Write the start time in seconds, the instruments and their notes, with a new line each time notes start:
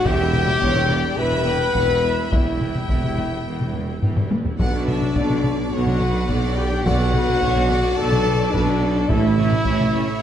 0.05 tuba E1, double bass section E1, cello section E2, viola section E3 B3, french horn section G4, trumpet section G4, violin section E5 G5, taiko
0.20 viola section G3 E4
0.33 viola section E3 B3, taiko mid
0.47 viola section G3 E4, taiko mid
0.61 double bass section E1, tuba E1, cello section E2, viola section E3 B3, violin section C#5, taiko
0.76 viola section G3 E4, taiko mid
0.90 viola section E3 B3, violin section D5, taiko mid
1.04 viola section G3 E4
1.17 double bass section E1, tuba E1, cello section E2, viola section E3 B3, trumpet section B4, french horn section B4, violin section E5 B5
1.32 viola section G3 E4, taiko mid
1.45 viola section E3 B3, violin section G5, taiko mid
1.61 viola section G3 E4
1.73 double bass section E1, tuba E1, cello section E2, viola section E3 B3, violin section F#5, taiko
1.90 viola section G3 E4
2.03 viola section E3 B3, violin section E5
2.19 viola section G3 E4
2.31 tuba E1, double bass section E1, cello section E2, viola section E3 B3, french horn section E4, trumpet section E4, violin section E5 G5, taiko
2.47 viola section G3 E4
2.61 viola section E3 B3, taiko mid
2.75 viola section G3 E4, taiko mid
2.89 tuba E1, double bass section E1, cello section E2, viola section E3 B3, taiko
3.03 viola section G3 E4, taiko mid
3.18 viola section E3 B3, taiko mid
3.32 viola section G3 E4
3.46 tuba E1, double bass section E1, cello section E2, viola section E3 B3
3.60 viola section G3 E4, taiko mid
3.74 viola section E3 B3, taiko mid
3.88 viola section G3 E4
4.02 double bass section E1, tuba E1, cello section E2, viola section E3 B3, taiko low-mid
4.16 viola section G3 E4, taiko low-mid
4.30 viola section E3 B3, taiko high
4.44 viola section G3 E4, taiko low
4.58 tuba B1, double bass section B1, cello section B2, viola section D3 B3, french horn section D4, trumpet section D4, violin section D5 F#5, taiko
4.73 viola section F#3 D4
4.86 viola section D3 B3, violin section E5, taiko mid
5.01 viola section F#3 D4, taiko mid
5.15 tuba B1, double bass section B1, cello section B2, viola section D3 B3, violin section D5, taiko
5.29 viola section F#3 D4, taiko mid
5.44 viola section D3 B3, taiko mid
5.58 viola section F#3 D4
5.71 tuba B1, double bass section B1, cello section B2, viola section D3 B3, french horn section F#4, trumpet section F#4, violin section C#5 F#5
5.86 viola section F#3 D4, taiko mid
6.00 viola section D3 B3, violin section B4, taiko mid
6.14 viola section F#3 D4
6.28 tuba B1, double bass section B1, cello section B2, viola section D3 B3, violin section D5, taiko
6.42 viola section F#3 D4
6.56 viola section D3 B3, french horn section G4, trumpet section G4, violin section G5
6.71 viola section F#3 D4
6.85 double bass section B1, tuba B1, cello section B2, viola section D3 B3, french horn section F#4, trumpet section F#4, violin section D5 F#5, taiko
6.99 viola section F#3 D4
7.13 viola section D3 B3, violin section B4, taiko mid
7.28 viola section F#3 D4, taiko mid
7.41 tuba B1, double bass section B1, cello section B2, viola section D3 B3, violin section C#5, taiko
7.56 viola section F#3 D4, taiko mid
7.70 viola section D3 B3, violin section D5, taiko mid
7.84 viola section F#3 D4
7.97 tuba B1, double bass section B1, cello section B2, viola section D3 B3, french horn section A4, trumpet section A4, violin section A5
8.12 viola section F#3 D4, taiko mid
8.26 viola section D3 B3, taiko mid
8.40 viola section F#3 D4
8.52 tuba B1, double bass section B1, cello section B2, viola section D3 B3, french horn section D4, trumpet section D4, violin section B4 D5, taiko
8.68 viola section F#3 D4
8.81 viola section D3 B3, violin section A4
8.96 viola section F#3 D4
9.08 tuba A1, double bass section A1, cello section A2, viola section E3 C#4, french horn section E4, trumpet section E4, violin section E5, taiko
9.24 viola section A3 E4
9.38 viola section E3 C#4, taiko mid
9.52 viola section A3 E4, taiko mid
9.65 tuba A1, double bass section A1, cello section A2, viola section E3 C#4, violin section C#5, taiko
9.81 viola section A3 E4, taiko mid
9.95 viola section E3 C#4, taiko mid
10.10 viola section A3 E4